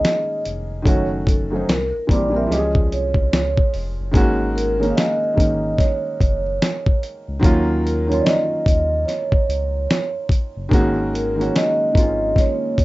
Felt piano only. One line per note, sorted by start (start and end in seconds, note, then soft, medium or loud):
0.00 0.38 D#3 medium
0.00 0.39 G#3 medium
0.00 0.40 A#3 medium
0.00 0.40 C#4 medium
0.00 0.41 G#4 medium
0.82 1.22 D#3 medium
0.82 1.23 F#3 medium
0.82 1.24 A3 medium
0.87 1.24 C#4 medium
0.87 1.25 F#4 loud
1.50 1.67 D#3 medium
1.50 1.67 F#3 medium
1.50 1.68 A3 medium
1.50 1.68 C#4 medium
1.56 1.69 D#4 medium
2.07 2.24 E3 medium
2.07 2.24 G3 medium
2.07 2.25 A#3 medium
2.07 2.25 C4 medium
2.13 2.27 G4 medium
2.30 2.47 E3 medium
2.30 2.48 G3 medium
2.30 2.49 A#3 medium
2.34 2.50 C4 medium
2.34 2.50 A#4 medium
2.47 3.82 F3 medium
2.47 3.83 G#3 medium
2.47 3.84 C#4 medium
2.52 2.59 G4 medium
2.58 3.88 G#4 medium
4.11 4.51 D#3 loud
4.11 4.52 G#3 loud
4.11 4.53 A#3 medium
4.11 4.53 C#4 loud
4.17 4.54 F#4 loud
4.79 5.17 D#3 medium
4.79 5.17 G#3 medium
4.79 5.18 A#3 medium
4.79 5.19 C#4 medium
4.84 5.19 D#4 medium
5.34 6.41 D#3 medium
5.34 6.41 G#3 medium
5.34 6.42 A#3 medium
5.38 6.43 C#4 medium
5.38 6.44 D#4 medium
7.39 7.80 D#3 loud
7.39 7.80 F#3 loud
7.39 7.81 A#3 loud
7.44 7.82 C#4 medium
7.44 7.83 F4 loud
8.07 9.04 D#3 medium
8.07 9.05 F#3 medium
8.07 9.05 A#3 medium
8.11 9.06 C#4 medium
8.11 9.07 F4 medium
10.69 11.09 D#3 loud
10.69 11.10 G#3 medium
10.69 11.10 A#3 loud
10.73 11.11 C#4 loud
10.73 11.11 F#4 loud
11.35 11.74 D#3 medium
11.35 11.75 G#3 medium
11.35 11.75 A#3 medium
11.40 11.76 C#4 medium
11.40 11.77 F#4 medium
11.92 12.85 D#3 medium
11.92 12.85 G#3 medium
11.92 12.85 A#3 medium
11.96 12.04 C4 soft
11.96 12.85 F4 medium
12.03 12.85 C#4 medium